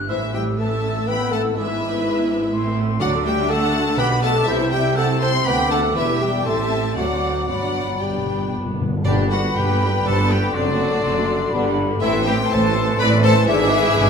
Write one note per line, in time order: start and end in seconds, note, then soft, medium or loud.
0.00 0.10 G4 medium
0.09 1.56 A1 medium
0.09 1.56 A2 medium
0.09 0.32 E3 medium
0.09 0.21 E3 medium
0.09 0.21 C4 medium
0.09 0.35 E4 medium
0.09 0.17 C5 medium
0.09 0.32 E5 medium
0.09 2.28 E6 medium
0.22 0.34 A3 soft
0.22 0.34 E4 soft
0.33 0.46 E3 medium
0.33 0.46 G3 medium
0.33 0.46 C4 medium
0.33 0.60 G4 medium
0.33 0.41 E5 medium
0.33 0.42 G5 medium
0.47 0.59 A3 soft
0.47 0.59 E4 medium
0.58 0.70 E3 medium
0.58 1.06 A3 medium
0.58 0.70 C4 medium
0.58 1.09 A4 medium
0.58 1.06 E5 medium
0.58 1.06 A5 medium
0.72 0.84 A3 medium
0.72 0.83 E4 soft
0.84 0.96 E3 medium
0.84 0.96 C4 medium
0.96 1.08 A3 medium
0.96 1.08 E4 medium
1.07 1.19 E3 medium
1.07 1.32 B3 medium
1.07 1.20 C4 medium
1.07 1.33 B4 medium
1.07 1.32 G5 medium
1.07 1.32 B5 medium
1.20 1.32 A3 medium
1.20 1.32 E4 medium
1.31 1.45 E3 medium
1.31 1.57 A3 medium
1.31 1.45 C4 medium
1.31 1.56 A4 medium
1.31 1.40 F#5 medium
1.31 1.41 A5 medium
1.45 1.57 A3 medium
1.45 1.57 E4 medium
1.56 2.51 G#1 medium
1.56 2.51 G#2 medium
1.56 2.77 E3 medium
1.56 1.68 G#3 medium
1.56 1.68 D4 medium
1.56 2.74 E4 medium
1.56 2.74 B4 medium
1.56 2.74 E5 medium
1.70 1.81 B3 soft
1.70 1.82 E4 medium
1.82 1.94 G#3 medium
1.82 1.94 D4 medium
1.94 2.06 B3 medium
1.94 2.05 E4 medium
2.06 2.17 G#3 medium
2.06 2.17 D4 medium
2.18 2.29 B3 medium
2.18 2.30 E4 medium
2.30 2.41 G#3 medium
2.30 2.41 D4 medium
2.42 2.53 B3 medium
2.42 2.52 E4 medium
2.53 3.01 A1 medium
2.53 3.01 A2 medium
2.53 2.64 A3 medium
2.53 2.64 E4 medium
2.53 3.00 C6 medium
2.66 2.77 C4 medium
2.66 2.77 A4 medium
2.78 2.89 A3 medium
2.78 2.89 E4 medium
2.90 3.01 C4 medium
2.90 3.01 A4 medium
3.00 3.99 D2 medium
3.00 3.70 D3 medium
3.00 3.99 D3 medium
3.00 3.12 F#3 medium
3.00 3.12 A3 medium
3.00 3.27 F#4 medium
3.00 3.12 F#4 medium
3.00 3.23 D5 medium
3.00 3.09 F#5 loud
3.00 3.49 D6 medium
3.14 3.26 D4 medium
3.14 3.26 A4 medium
3.25 3.49 G3 medium
3.25 3.38 A3 medium
3.25 3.38 F#4 medium
3.25 3.49 G4 medium
3.25 3.49 E5 medium
3.25 3.49 G5 loud
3.39 3.50 D4 medium
3.39 3.50 A4 medium
3.49 3.99 A3 medium
3.49 3.62 A3 medium
3.49 3.62 F#4 medium
3.49 3.98 A4 loud
3.49 3.99 F#5 loud
3.49 3.98 A5 loud
3.49 3.99 E6 medium
3.63 3.74 D4 medium
3.63 3.74 A4 medium
3.75 3.87 A3 medium
3.75 3.87 F#4 medium
3.87 3.99 D4 medium
3.87 3.99 A4 medium
3.97 4.48 B1 medium
3.97 4.48 B2 medium
3.97 4.23 B3 loud
3.97 4.10 B3 medium
3.97 4.10 G4 medium
3.97 4.09 B4 loud
3.97 4.07 G5 loud
3.97 4.22 B5 loud
3.97 4.48 D6 medium
4.11 4.23 D4 medium
4.11 4.24 B4 medium
4.22 4.47 A3 loud
4.22 4.36 B3 medium
4.22 4.36 G4 medium
4.22 4.49 A4 medium
4.22 4.32 F#5 medium
4.22 4.46 A5 loud
4.36 4.48 D4 medium
4.36 4.48 B4 medium
4.46 5.44 C2 medium
4.46 5.44 C3 medium
4.46 4.72 E3 medium
4.46 4.75 E4 medium
4.46 4.59 E4 medium
4.46 4.59 G4 medium
4.46 4.71 C5 medium
4.46 4.71 E5 loud
4.46 4.96 G6 medium
4.61 4.73 C4 medium
4.61 4.71 E4 medium
4.71 4.96 G3 medium
4.71 4.85 E4 medium
4.71 4.85 G4 medium
4.71 4.97 G4 medium
4.71 4.96 E5 medium
4.71 4.95 G5 loud
4.86 4.97 C4 medium
4.86 4.96 E4 medium
4.96 5.21 A3 medium
4.96 5.08 E4 medium
4.96 5.08 G4 medium
4.96 5.08 A4 medium
4.96 5.06 F#5 loud
4.96 5.20 A5 loud
4.96 5.45 E6 medium
5.09 5.21 C4 medium
5.09 5.21 E4 medium
5.20 5.46 C4 loud
5.20 5.33 E4 medium
5.20 5.34 G4 medium
5.20 5.33 C5 medium
5.20 5.30 A5 medium
5.20 5.45 C6 loud
5.34 5.46 C4 medium
5.34 5.46 E4 medium
5.44 5.95 D2 medium
5.44 5.96 D2 medium
5.44 5.71 B3 loud
5.44 5.58 D4 medium
5.44 5.58 F#4 medium
5.44 5.58 B4 medium
5.44 5.70 G5 loud
5.44 5.70 B5 loud
5.44 6.44 D6 medium
5.58 5.71 C4 medium
5.58 5.71 A4 medium
5.70 5.95 A3 medium
5.70 5.83 D4 medium
5.70 5.83 F#4 medium
5.70 5.97 A4 medium
5.70 5.96 F#5 medium
5.70 5.79 A5 loud
5.83 5.95 C4 medium
5.83 5.95 A4 medium
5.95 6.42 E1 medium
5.95 6.42 E2 medium
5.95 6.07 E3 medium
5.95 6.42 B3 medium
5.95 6.20 E4 medium
5.95 6.42 G4 medium
5.95 6.21 B4 medium
5.95 6.20 E5 loud
6.21 6.45 G3 medium
6.21 6.32 G4 medium
6.21 6.44 E5 medium
6.21 6.46 G5 medium
6.45 6.96 A1 medium
6.45 6.96 A2 medium
6.45 6.97 A3 medium
6.45 6.95 C4 medium
6.45 6.95 G4 medium
6.45 6.95 A4 medium
6.45 6.95 E5 medium
6.45 6.96 A5 loud
6.45 6.96 C6 medium
6.95 7.48 D2 medium
6.95 7.47 F#3 medium
6.95 7.47 C4 medium
6.95 7.47 D4 medium
6.95 7.47 F#4 medium
6.95 7.45 D5 medium
6.95 7.47 F#5 medium
6.95 7.47 D6 medium
7.47 8.85 G1 medium
7.47 8.85 G2 medium
7.47 7.54 G2 soft
7.47 7.99 F#3 medium
7.47 7.99 B3 medium
7.47 7.99 D4 medium
7.47 8.03 F#4 medium
7.47 7.98 D5 medium
7.47 8.00 F#5 medium
7.47 8.77 B5 medium
7.55 7.62 G2 soft
7.79 7.85 G2 soft
7.87 7.93 G2 soft
7.95 8.01 G2 soft
7.99 8.09 G2 soft
7.99 8.52 G3 soft
7.99 8.83 B3 medium
7.99 8.83 D4 medium
7.99 8.54 G4 medium
7.99 8.51 D5 medium
7.99 8.53 G5 medium
8.11 8.17 G2 medium
8.18 8.25 G2 medium
8.26 8.33 G2 medium
8.34 8.41 G2 medium
8.42 8.49 G2 medium
8.50 8.57 G2 medium
8.58 8.64 G2 medium
8.66 8.73 G2 medium
8.74 8.80 G2 medium
8.81 8.87 G2 medium
8.89 8.96 G2 medium
8.97 9.04 G2 medium
9.05 9.50 G1 medium
9.05 9.49 G2 medium
9.05 9.76 G2 medium
9.05 11.98 D3 medium
9.05 9.17 G3 medium
9.05 9.23 B3 medium
9.05 9.29 D4 medium
9.05 9.23 D4 medium
9.05 9.17 D4 medium
9.05 9.29 G4 medium
9.05 10.51 B4 medium
9.05 9.13 D5 loud
9.05 10.50 B5 medium
9.18 9.31 B3 medium
9.18 9.31 G4 medium
9.30 9.43 G3 medium
9.30 9.43 D4 medium
9.30 9.55 F#4 medium
9.30 9.38 A4 medium
9.30 9.54 F#5 medium
9.43 9.55 B3 medium
9.43 9.55 G4 medium
9.55 9.99 G1 medium
9.55 9.99 G2 medium
9.55 9.67 G3 medium
9.55 9.67 D4 medium
9.55 10.04 G4 medium
9.55 10.04 B4 medium
9.55 10.05 G5 medium
9.68 9.80 B3 medium
9.68 9.80 G4 medium
9.80 9.93 G3 medium
9.80 9.92 D4 medium
9.92 10.05 B3 medium
9.92 10.05 G4 medium
10.04 10.49 G1 medium
10.04 10.48 G2 medium
10.04 10.16 G3 medium
10.04 10.16 D4 medium
10.04 10.29 A4 medium
10.04 10.29 C5 medium
10.04 10.30 A5 loud
10.17 10.30 B3 medium
10.17 10.30 G4 medium
10.29 10.42 G3 medium
10.29 10.42 D4 medium
10.29 10.54 G4 medium
10.29 10.37 B4 medium
10.29 10.54 G5 loud
10.42 10.54 B3 medium
10.42 10.54 G4 medium
10.53 10.98 F#1 medium
10.53 10.98 F#2 medium
10.53 10.66 F#3 medium
10.53 10.66 C4 medium
10.53 10.72 C4 medium
10.53 11.77 D4 medium
10.53 10.72 D4 medium
10.53 11.74 F#4 medium
10.53 11.54 A4 medium
10.53 11.75 D5 loud
10.53 11.52 C6 medium
10.66 10.79 A3 medium
10.66 10.79 D4 medium
10.79 10.91 F#3 medium
10.79 10.91 C4 medium
10.91 11.04 A3 medium
10.91 11.04 D4 medium
11.03 11.47 F#1 medium
11.03 11.47 F#2 medium
11.03 11.15 F#3 medium
11.03 11.15 C4 medium
11.16 11.28 A3 medium
11.16 11.28 D4 medium
11.28 11.41 F#3 medium
11.28 11.40 C4 medium
11.41 11.53 A3 medium
11.41 11.53 D4 medium
11.52 11.96 G1 medium
11.52 11.96 G2 loud
11.52 11.64 D3 medium
11.52 11.64 B3 medium
11.52 11.70 B3 medium
11.52 11.70 D4 medium
11.52 12.01 G4 medium
11.52 12.02 B5 medium
11.65 11.77 G3 medium
11.65 11.77 D4 medium
11.78 11.90 D3 medium
11.78 11.90 B3 medium
11.90 12.02 G3 medium
11.90 12.02 D4 medium
12.01 12.45 A1 medium
12.01 12.45 A2 medium
12.01 14.10 E3 medium
12.01 12.13 A3 medium
12.01 12.19 C4 medium
12.01 12.13 C4 medium
12.01 12.12 E4 medium
12.01 12.19 E4 medium
12.01 12.24 A4 medium
12.01 13.45 A4 medium
12.01 12.24 E5 loud
12.01 13.48 C6 medium
12.14 12.26 E3 medium
12.14 12.25 A3 medium
12.26 12.38 A3 medium
12.26 12.38 C4 medium
12.26 12.37 G4 loud
12.26 12.34 B4 medium
12.26 12.50 G5 loud
12.39 12.51 E3 medium
12.39 12.49 A3 medium
12.50 12.93 A1 loud
12.50 12.93 A2 loud
12.50 12.61 A3 medium
12.50 12.62 C4 medium
12.50 12.98 A4 medium
12.50 12.98 C5 medium
12.50 12.99 A5 loud
12.63 12.75 E3 medium
12.63 12.73 A3 medium
12.74 12.86 A3 medium
12.74 12.87 C4 medium
12.87 12.99 E3 medium
12.87 12.98 A3 medium
12.98 13.42 A1 medium
12.98 13.42 A2 loud
12.98 13.10 A3 medium
12.98 13.10 C4 medium
12.98 13.10 B4 loud
12.98 13.23 D5 loud
12.98 13.07 B5 loud
13.11 13.23 E3 medium
13.11 13.23 A3 medium
13.23 13.35 A3 medium
13.23 13.36 C4 medium
13.23 13.34 A4 loud
13.23 13.48 C5 loud
13.23 13.47 A5 loud
13.36 13.48 E3 medium
13.36 13.48 A3 medium
13.47 13.91 G#1 loud
13.47 13.91 G#2 loud
13.47 13.59 D3 medium
13.47 13.64 D4 medium
13.47 13.59 D4 medium
13.47 13.64 E4 medium
13.47 14.10 E4 loud
13.47 14.10 G#4 loud
13.47 14.10 B4 medium
13.47 14.10 E5 loud
13.47 14.10 D6 loud
13.60 13.72 E3 medium
13.60 13.72 E4 medium
13.72 13.84 D3 medium
13.72 13.84 D4 medium
13.84 13.96 E3 medium
13.84 13.97 E4 medium
13.96 14.10 G#1 medium
13.96 14.10 G#2 loud
13.96 14.08 D3 medium
13.96 14.08 D4 medium